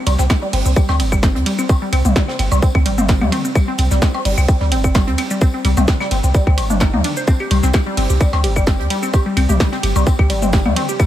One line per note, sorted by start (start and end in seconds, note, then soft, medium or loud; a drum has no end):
0.06 0.16 C2 loud
0.06 0.12 G3 loud
0.06 closed hi-hat loud
0.06 ride medium
0.06 tambourine medium
0.06 percussion blips medium
0.18 0.27 C2 medium
0.18 0.21 C4 loud
0.18 snare medium
0.18 shaker medium
0.30 0.34 C4 medium
0.30 kick loud
0.30 snare loud
0.30 tambourine medium
0.30 claves medium
0.30 shaker soft
0.42 0.47 G3 loud
0.53 0.62 G1 loud
0.53 0.56 C4 loud
0.53 closed hi-hat medium
0.53 open hi-hat medium
0.53 ride medium
0.66 0.74 C2 loud
0.66 0.69 C4 medium
0.66 shaker medium
0.76 0.82 G3 loud
0.76 kick loud
0.76 tambourine medium
0.76 claves soft
0.76 shaker soft
0.89 1.01 D2 medium
0.89 0.91 C4 loud
0.89 snare soft
0.89 percussion blips medium
1.00 1.37 G1 medium
1.00 1.04 C4 medium
1.00 closed hi-hat medium
1.00 ride medium
1.00 tambourine medium
1.12 1.17 G3 loud
1.12 kick medium
1.12 claves medium
1.12 shaker medium
1.23 1.25 C4 loud
1.23 kick loud
1.23 snare loud
1.23 tambourine medium
1.23 shaker soft
1.35 1.43 D#2 loud
1.35 1.39 C4 medium
1.35 closed hi-hat soft
1.46 1.52 G3 loud
1.46 closed hi-hat medium
1.46 ride medium
1.46 tambourine medium
1.59 1.61 C4 loud
1.59 claves soft
1.59 shaker medium
1.69 1.73 C4 medium
1.69 kick loud
1.69 tambourine medium
1.69 percussion blips medium
1.69 shaker soft
1.82 1.87 G3 loud
1.93 2.02 C2 loud
1.93 1.95 C4 loud
1.93 closed hi-hat loud
1.93 ride medium
1.93 tambourine medium
1.93 claves medium
2.05 2.13 C2 medium
2.05 2.09 C4 medium
2.05 closed hi-hat soft
2.05 mid tom medium
2.05 shaker medium
2.16 2.22 G3 loud
2.16 kick loud
2.16 snare loud
2.16 tambourine medium
2.16 shaker soft
2.28 2.30 C4 loud
2.28 snare medium
2.39 2.48 G1 loud
2.39 2.43 C4 medium
2.39 closed hi-hat loud
2.39 ride medium
2.39 tambourine medium
2.39 claves soft
2.52 2.60 C2 loud
2.52 2.57 G3 loud
2.52 percussion blips medium
2.52 shaker medium
2.62 2.65 C4 loud
2.62 kick loud
2.62 tambourine medium
2.62 shaker soft
2.75 2.87 D2 medium
2.75 2.78 C4 medium
2.75 kick medium
2.75 claves medium
2.86 3.23 G1 medium
2.86 2.92 G3 loud
2.86 closed hi-hat loud
2.86 ride medium
2.86 tambourine medium
2.98 3.00 C4 loud
2.98 mid tom medium
2.98 shaker medium
3.08 3.13 C4 medium
3.08 kick loud
3.08 snare loud
3.08 tambourine loud
3.08 shaker soft
3.21 3.29 D#2 loud
3.21 3.27 G3 loud
3.21 mid tom loud
3.21 claves soft
3.32 3.35 C4 loud
3.32 closed hi-hat loud
3.32 ride medium
3.32 tambourine medium
3.32 percussion blips medium
3.45 3.48 C4 medium
3.45 shaker medium
3.55 3.61 G3 loud
3.55 kick loud
3.55 tambourine medium
3.55 claves medium
3.55 shaker soft
3.68 3.70 C4 loud
3.78 3.88 C2 loud
3.78 3.83 C4 medium
3.78 closed hi-hat medium
3.78 ride medium
3.78 tambourine medium
3.91 3.99 C2 medium
3.91 3.96 G3 loud
3.91 snare medium
3.91 shaker medium
4.02 4.04 C4 loud
4.02 kick loud
4.02 snare loud
4.02 tambourine medium
4.02 claves soft
4.02 shaker soft
4.14 4.18 C4 medium
4.14 percussion blips medium
4.25 4.35 G1 loud
4.25 4.31 G3 loud
4.25 closed hi-hat loud
4.25 open hi-hat medium
4.25 ride medium
4.38 4.46 C2 loud
4.38 4.40 C4 medium
4.38 claves medium
4.38 shaker medium
4.48 4.52 C4 medium
4.48 kick loud
4.48 tambourine medium
4.48 shaker soft
4.61 4.73 D2 medium
4.61 4.66 G3 loud
4.61 snare soft
4.72 5.09 G1 medium
4.72 4.74 C4 loud
4.72 closed hi-hat loud
4.72 ride medium
4.72 tambourine medium
4.84 4.88 C4 medium
4.84 kick medium
4.84 claves soft
4.84 shaker medium
4.95 5.01 G3 loud
4.95 kick loud
4.95 snare loud
4.95 tambourine medium
4.95 percussion blips medium
4.95 shaker soft
5.07 5.15 D#2 loud
5.07 5.10 C4 loud
5.07 closed hi-hat soft
5.18 5.22 C4 medium
5.18 closed hi-hat loud
5.18 ride medium
5.18 tambourine medium
5.18 claves medium
5.31 5.36 G3 loud
5.31 shaker medium
5.41 5.44 C4 loud
5.41 kick loud
5.41 tambourine medium
5.41 shaker soft
5.54 5.57 C4 medium
5.65 5.74 C2 loud
5.65 5.71 G3 loud
5.65 closed hi-hat medium
5.65 ride medium
5.65 tambourine medium
5.65 claves soft
5.77 5.85 C2 medium
5.77 5.79 C4 loud
5.77 closed hi-hat soft
5.77 mid tom medium
5.77 percussion blips medium
5.77 shaker medium
5.88 5.92 C4 medium
5.88 kick loud
5.88 snare loud
5.88 tambourine medium
5.88 shaker soft
6.00 6.06 G3 loud
6.00 snare medium
6.00 claves medium
6.11 6.21 G1 medium
6.11 6.14 C4 medium
6.11 closed hi-hat medium
6.11 ride medium
6.11 tambourine medium
6.24 6.32 C2 loud
6.24 6.27 C4 medium
6.24 shaker soft
6.34 6.40 G3 loud
6.34 kick loud
6.34 tambourine medium
6.34 shaker soft
6.47 6.59 D2 medium
6.47 6.49 C4 loud
6.47 kick medium
6.47 claves soft
6.58 6.95 G1 medium
6.58 closed hi-hat loud
6.58 ride medium
6.58 tambourine medium
6.58 percussion blips medium
6.70 6.72 D4 medium
6.70 mid tom medium
6.70 shaker medium
6.80 6.85 D#4 medium
6.80 kick loud
6.80 snare loud
6.80 snare medium
6.80 tambourine medium
6.80 claves medium
6.80 shaker soft
6.94 7.02 D#2 medium
6.94 6.96 D#4 medium
6.94 mid tom loud
7.04 7.10 D4 medium
7.04 closed hi-hat loud
7.04 ride medium
7.04 tambourine medium
7.17 7.20 C5 medium
7.17 shaker soft
7.27 7.30 C4 loud
7.27 kick loud
7.27 tambourine medium
7.27 shaker soft
7.40 7.44 G4 medium
7.40 claves soft
7.51 7.60 C2 loud
7.51 7.57 G3 loud
7.51 closed hi-hat loud
7.51 ride medium
7.51 tambourine medium
7.51 percussion blips medium
7.63 7.71 C2 medium
7.63 7.65 C4 loud
7.63 snare medium
7.63 shaker medium
7.73 7.78 G4 medium
7.73 kick loud
7.73 snare loud
7.73 snare medium
7.73 tambourine medium
7.73 claves medium
7.73 shaker soft
7.86 7.92 G3 loud
7.97 8.07 G1 loud
7.97 8.00 C4 loud
7.97 closed hi-hat medium
7.97 open hi-hat medium
7.97 ride medium
8.10 8.18 C2 loud
8.10 8.13 G4 medium
8.10 shaker medium
8.21 8.27 G3 loud
8.21 kick loud
8.21 tambourine loud
8.21 claves soft
8.21 shaker soft
8.33 8.46 D2 medium
8.33 8.35 C4 loud
8.33 snare soft
8.33 percussion blips medium
8.44 8.81 G1 medium
8.44 8.48 G4 medium
8.44 closed hi-hat loud
8.44 ride medium
8.44 tambourine medium
8.56 8.61 G3 loud
8.56 kick medium
8.56 claves medium
8.56 shaker medium
8.67 8.69 C4 loud
8.67 kick loud
8.67 snare medium
8.67 snare loud
8.67 tambourine loud
8.67 shaker soft
8.80 8.88 D#2 medium
8.80 8.83 G4 medium
8.80 closed hi-hat soft
8.90 8.96 G3 loud
8.90 closed hi-hat medium
8.90 ride medium
8.90 tambourine medium
9.03 9.05 C4 loud
9.03 claves soft
9.03 shaker soft
9.14 9.18 G4 medium
9.14 kick loud
9.14 tambourine medium
9.14 percussion blips medium
9.14 shaker soft
9.26 9.31 G3 loud
9.37 9.46 C2 loud
9.37 9.39 C4 loud
9.37 closed hi-hat medium
9.37 ride medium
9.37 tambourine medium
9.37 claves medium
9.49 9.57 C2 medium
9.49 9.53 G4 medium
9.49 closed hi-hat soft
9.49 mid tom medium
9.49 shaker medium
9.60 9.66 G3 loud
9.60 kick loud
9.60 snare medium
9.60 snare loud
9.60 tambourine medium
9.60 shaker soft
9.73 9.75 C4 loud
9.73 snare medium
9.83 9.93 G1 medium
9.83 9.87 G4 medium
9.83 closed hi-hat medium
9.83 ride medium
9.83 tambourine medium
9.83 claves soft
9.96 10.04 C2 loud
9.96 10.01 G3 loud
9.96 percussion blips medium
9.96 shaker soft
10.07 10.09 C4 loud
10.07 kick loud
10.07 tambourine medium
10.07 shaker soft
10.19 10.31 D2 medium
10.19 10.22 G4 medium
10.19 kick medium
10.19 claves medium
10.30 10.67 G1 medium
10.30 10.36 G3 loud
10.30 closed hi-hat loud
10.30 ride medium
10.30 tambourine medium
10.42 10.44 C4 loud
10.42 mid tom medium
10.42 shaker medium
10.53 10.57 G4 medium
10.53 kick loud
10.53 snare medium
10.53 snare loud
10.53 tambourine medium
10.53 shaker soft
10.66 10.74 D#2 medium
10.66 10.71 G3 loud
10.66 mid tom medium
10.66 claves soft
10.76 10.79 C4 loud
10.76 closed hi-hat medium
10.76 ride medium
10.76 tambourine medium
10.76 percussion blips medium
10.89 10.92 G4 medium
10.89 shaker medium
11.00 11.06 G3 loud
11.00 kick loud
11.00 tambourine medium
11.00 claves medium
11.00 shaker soft